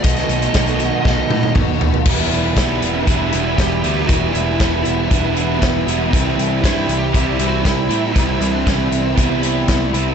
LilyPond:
<<
  \new Staff \with { instrumentName = "Lead electric guitar" } { \time 4/4 \key e \minor \tempo 4 = 118 dis''2. r4 | r4 b8. d'4 e'16 g'4 | fis'8 e'4 e'8 d'4 b8. r16 | c'4 e'8. g'4 fis'16 e'4 |
e'8. d'16 c'8. c'16 b4. r8 | }
  \new Staff \with { instrumentName = "Overdriven electric guitar" } { \time 4/4 \key e \minor <b, dis a b fis'>8 <a b fis'>8 <dis a b fis'>8 <a b fis'>8 <b, dis a b fis'>8 <a b fis'>8 <dis a b fis'>8 <a b fis'>8 | <e, b, e g b e'>4 <e g b e'>8 <e g b e'>8 <e g b e'>8 <e g b e'>4 <e g b e'>8 | <e, b, e g b e'>4 <e g b e'>8 <e g b e'>8 <e g b e'>8 <e g b e'>4 <e g b e'>8 | <c e g c' e'>4 <e g c' e'>8 <g c' e'>8 <e g c' e'>8 <g c' e'>4 <g c' e'>8 |
<c e g c' e'>4 <e g c' e'>8 <g c' e'>8 <e g c' e'>8 <g c' e'>4 <g c' e'>8 | }
  \new Staff \with { instrumentName = "Overdriven electric guitar" } { \time 4/4 \key e \minor <b, dis fis b dis' a'>1 | <e g b e'>4 <e g b e'>4 <e g b e'>8 <g b e'>4 <g b e'>8 | <e g b e'>4 <e g b e'>4 <e g b e'>8 <g b e'>4 <g b e'>8 | <c e g c' e'>4 <e g c' e'>4 <c e g c' e'>8 <g c' e'>4 <g c' e'>8 |
<c e g c' e'>4 <e g c' e'>4 <c e g c' e'>8 <g c' e'>4 <g c' e'>8 | }
  \new Staff \with { instrumentName = "Twelve-string acoustic guitar" } { \time 4/4 \key e \minor fis8 fis8 a8 fis'8 a8 dis'8 fis'8 a8 | r1 | r1 | r1 |
r1 | }
  \new Staff \with { instrumentName = "Picked electric bass" } { \clef bass \time 4/4 \key e \minor b,,8 b,,8 b,,4 b,,8 a,8 dis,4 | e,,8 e,,8 b,,8 e,,8 e,,8 e,,8 e,,8 d,8 | e,,8 e,,8 e,,8 e,,8 e,,4 e,,8 e,,8 | c,8 c,8 g,8 c,8 c,8 c,8 c,8 a,8 |
c,8 c,8 c,8 c,8 c,4 c,8 c,8 | }
  \new DrumStaff \with { instrumentName = "Drums" } \drummode { \time 4/4 <hh bd>16 <hh sn>16 hh16 hh16 <hh bd sn>16 hh16 hh8 <bd sn>8 tommh16 tommh16 <bd toml>8 tomfh16 tomfh16 | <cymc bd>16 sn16 hh8 <hh bd sn>8 hh8 <hh bd>8 hh8 <hh bd sn>8 hh8 | <hh bd>8 hh8 <hh bd sn>8 hh8 <hh bd>8 hh8 <hh bd sn>8 hh8 | <hh bd>8 hh8 <hh bd sn>8 hh8 <hh bd>8 hh8 <hh bd sn>8 hh8 |
<hh bd>8 hh8 <hh bd sn>8 hh8 <hh bd>8 hh8 <hh bd sn>8 hh8 | }
>>